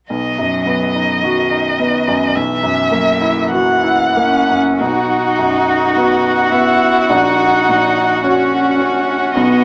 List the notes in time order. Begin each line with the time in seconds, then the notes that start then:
0.09 B1 F#3 D#5
0.38 F#2
0.66 B3 D#5
0.95 D#4
1.23 D#3 F#4
1.51 D#4
1.79 B3
2.08 F#2
2.35 B1 E3 E5
2.63 F#2
2.92 F#3 A#3
3.21 E4
3.51 E3 F#4 F#5
3.83 E4
4.17 A#3 C#4
4.49 F#2
4.79 B1 D#4 F#4 F#5
5.38 F#2
5.96 B3 F#4
6.52 B3 E4
7.09 A#1 D#4
7.69 A#2
8.24 C#4 F#4
8.80 C#4
9.35 B1 B3 F#4 D#5